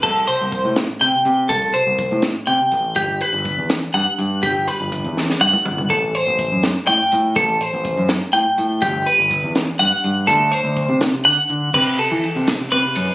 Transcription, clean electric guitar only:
\new Staff \with { instrumentName = "Clean electric guitar" } { \time 6/8 \key c \lydian \tempo 4. = 82 a'8 c''4 r8 g''4 | a'8 c''4 r8 g''4 | g'8 b'4 r8 fis''4 | g'8 b'4 r8 fis''4 |
a'8 c''4 r8 g''4 | a'8 c''4 r8 g''4 | g'8 b'4 r8 fis''4 | a'8 c''4 r8 fis''4 |
b'8 a'4 r8 b'4 | }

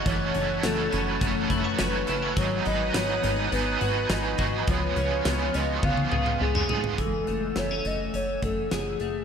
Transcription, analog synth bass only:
\new Staff \with { instrumentName = "Analog synth bass" } { \clef bass \time 4/4 \key fis \dorian \tempo 4 = 104 fis,,8 fis,,8 fis,,8 fis,,8 fis,,8 fis,,8 fis,,8 fis,,8 | gis,,8 gis,,8 gis,,8 gis,,8 gis,,8 gis,,8 gis,,8 gis,,8 | cis,8 cis,8 cis,8 cis,8 cis,8 cis,8 cis,8 cis,8 | fis,,8 fis,,8 fis,,8 fis,,8 fis,,8 fis,,8 fis,,8 fis,,8 | }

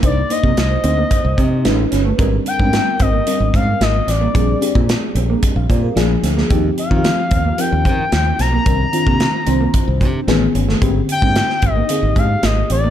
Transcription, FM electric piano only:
\new Staff \with { instrumentName = "FM electric piano" } { \time 4/4 \key aes \lydian \tempo 4 = 111 << { r1 | r1 | r2 r16 f''16 d''16 bes'8 r8. | r1 |
r1 | r1 | } \\ { <bes d' ees' c''>16 r16 <bes d' ees' c''>8. r16 <bes c' ees' c''>4~ <bes c' ees' c''>16 r16 <gis cis' dis' b'>8. r16 | <g c' d' bes'>8 r16 <g ces' c' d' bes'>8. r8 <g c' d' bes'>4~ <g c' d' bes'>16 r8. | <g c' d' aes'>16 r16 <c' d' g' aes'>8. r4. r16 <f bes d' aes'>8. r16 | <f c' ees' g'>8 r16 <f c' ees' f' g'>8. r8 <f c' ees' bes'>4~ <f c' ees' bes'>16 r8. |
<ees c' d' bes'>16 r16 <ees c' d' f'>8. r16 <ees c' d' c''>4~ <ees c' d' c''>16 r16 <dis b cis' gis'>8. r16 | <d bes c' g'>8 r16 <bes c' d' ees'>8. r8 <d bes c' aes'>4~ <d bes c' aes'>16 r8. | } >> }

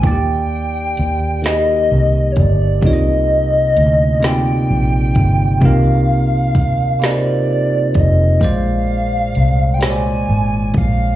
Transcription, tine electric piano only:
\new Staff \with { instrumentName = "Tine electric piano" } { \time 6/8 \key c \minor \tempo 4. = 43 <ees bes f' g' d''>4 r8 <ees bes g' ees''>4 r8 | <c bes ees' f' des'' ees''>4 r8 <c bes ees' f' d''>4 r8 | <c bes ees' f' bes'>4 r8 <c bes ees' f' bes' c''>4 r8 | <bes, aes c'' d''>4 r8 <bes, aes c'' des'' d''>4 r8 | }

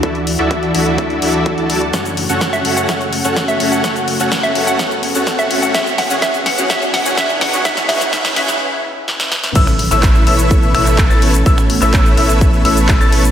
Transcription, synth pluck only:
\new Staff \with { instrumentName = "Synth pluck" } { \time 4/4 \key a \major \tempo 4 = 126 r1 | r4 r16 e''8 fis''16 r4 r16 e''8 fis''16 | r4 r16 e''8 fis''16 r4 r16 e''8 fis''16 | e''8 fis''16 r16 e''8 fis''16 r16 e''8 fis''16 r16 e''8 fis''16 r16 |
e''8 e''8 e''8 e''8 r2 | r1 | r1 | }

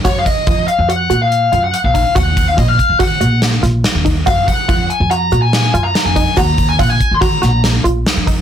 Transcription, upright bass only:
\new Staff \with { instrumentName = "Upright bass" } { \clef bass \time 5/4 \key ees \minor \tempo 4 = 142 ges,8 r8 f,8 r16 f,8. bes,4 ges,8 r16 bes,,8 r16 | ees,4 bes,,8 r16 ees8 r16 bes,,4 bes,,8 r16 ees,8. | ges,8 r8 f,8 r16 f,8. bes,4 ges,8 r16 f,8 r16 | ees,4 bes,,8 r16 ees8 r16 bes,,4 bes,,8 r16 f,8. | }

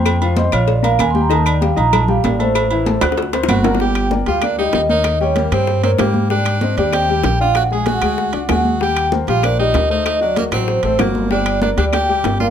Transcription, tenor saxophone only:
\new Staff \with { instrumentName = "Tenor saxophone" } { \time 4/4 \key g \minor \tempo 4 = 192 r1 | r1 | r2. fis'4 | g'4 r8 f'8 d'8 ees'8 ees'8 ees'8~ |
ees'8 cis'8 bes8 c'4 c'8 bes4 | d'4. d'8 g'4 g'8 f'8 | fis'8 aes'8 fis'2 fis'4 | g'4 r8 f'8 d'8 ees'4 ees'8 |
ees'8 d'8 bes8 c'4 c'8 bes4 | d'4 d'8 d'8 g'4. f'8 | }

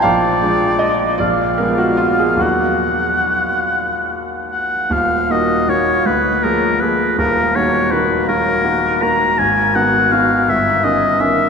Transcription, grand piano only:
<<
  \new Staff \with { instrumentName = "Grand piano" } { \time 6/8 \key ees \minor \tempo 4. = 53 f''4 ees''8 d''8 bes'16 ges'16 f'16 aes'16 | ges'4. r4. | r2. | r2. |
r2. | }
  \new Staff \with { instrumentName = "Grand piano" } { \time 6/8 \key ees \minor bes,,8 <f aes d'>4 bes,,8 <f aes ces'>4 | <ees, ees ges bes>2. | <ees,, ees,>8 <ees bes ges'>8 <ees bes ges'>8 d,8 <f bes aes'>8 <f bes aes'>8 | <ees,, ees,>8 <ees bes ges'>8 <ees bes ges'>8 <ees bes ges'>8 <ees bes ges'>8 <ees bes ges'>8 |
aes,,8 <ees ces' ges'>8 <ees ces' ges'>8 g,,8 <ees des' bes'>8 <ees des' bes'>8 | }
>>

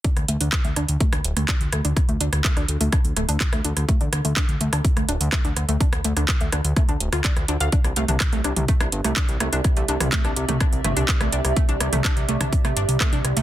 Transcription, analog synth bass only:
\new Staff \with { instrumentName = "Analog synth bass" } { \clef bass \time 4/4 \key d \minor \tempo 4 = 125 r16 d,16 d,16 d,16 r16 d,16 d,16 d,16 r16 d,16 d,,16 d,16 r16 d,16 d,16 d,16 | r16 d,16 d,16 d,16 r16 d,16 d,16 d,16 r16 d,16 d,,16 d,16 r16 d,16 d,16 d,16 | r16 d,16 d,16 d,16 r16 d,16 d,16 d,16 r16 d,16 d,,16 d,16 r16 d,16 d,16 d,16 | r16 d,16 d,16 d,16 r16 d,16 d,16 d,16 r16 d,16 d,,16 d,16 r16 d,16 d,16 d,16 |
r16 c,16 c,16 c,16 r16 c,16 c,16 c,16 r16 c,16 g,,16 c,16 r16 c,16 c,16 c,16 | r16 c,16 c,16 c,16 r16 c,16 c,16 c,16 r16 c,16 g,,16 c,16 r16 c,16 c,16 c,16 | r16 c,16 c,16 c,16 r16 c,16 c,16 c,16 r16 c,16 g,,16 c,16 r16 c,16 c,16 c,16 | }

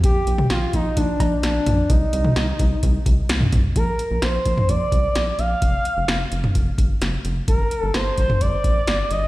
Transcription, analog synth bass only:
\new Staff \with { instrumentName = "Analog synth bass" } { \clef bass \time 4/4 \key bes \major \tempo 4 = 129 bes,,8 bes,,8 bes,,8 bes,,8 bes,,8 bes,,8 bes,,8 bes,,8 | c,8 c,8 c,8 c,8 c,8 c,8 c,8 c,8 | bes,,8 r16 bes,,16 bes,,8 bes,,8 bes,,8 c,8 bes,,8 bes,,8 | f,,8 r16 f,,16 f,,8 f,,8 f,,8 g,,8 f,,8 f,,8 |
g,,8 r16 g,,16 g,,8 g,,8 g,,8 a,,8 g,,8 g,,8 | }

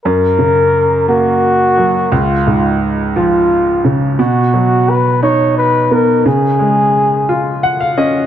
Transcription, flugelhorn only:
\new Staff \with { instrumentName = "Flugelhorn" } { \time 6/8 \key fis \major \tempo 4. = 58 ais'4. fis'4. | eis'4 r8 eis'4 r8 | fis'4 b'8 cis''8 b'8 ais'8 | gis'2 r4 | }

